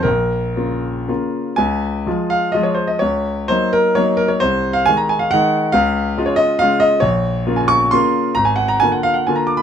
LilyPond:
<<
  \new Staff \with { instrumentName = "Grand piano" } { \time 3/4 \key bes \minor \tempo 4 = 132 bes'2 r4 | \key des \major aes''4. f''8 ees''16 des''16 c''16 ees''16 | des''4 c''8 bes'8 des''8 bes'16 des''16 | c''8. f''16 aes''16 bes''16 aes''16 f''16 ges''4 |
f''4~ f''16 des''16 ees''8 f''8 ees''8 | \key bes \minor des''4~ des''16 aes''16 des'''8 c'''4 | bes''16 aes''16 ges''16 bes''16 aes''16 ges''16 f''16 ges''16 aes''16 bes''16 d'''16 ces'''16 | }
  \new Staff \with { instrumentName = "Grand piano" } { \clef bass \time 3/4 \key bes \minor bes,,4 <des bes f'>4 <des bes f'>4 | \key des \major des,4 <f aes f'>4 <f aes f'>4 | des,4 <ges bes ees'>4 <ges bes ees'>4 | c,4 <ees aes ees'>4 <ees aes ees'>4 |
des,4 <des aes f'>4 <des aes f'>4 | \key bes \minor bes,,4 <des bes f'>4 <des bes f'>4 | aes,,4 <d bes f'>4 <d bes f'>4 | }
>>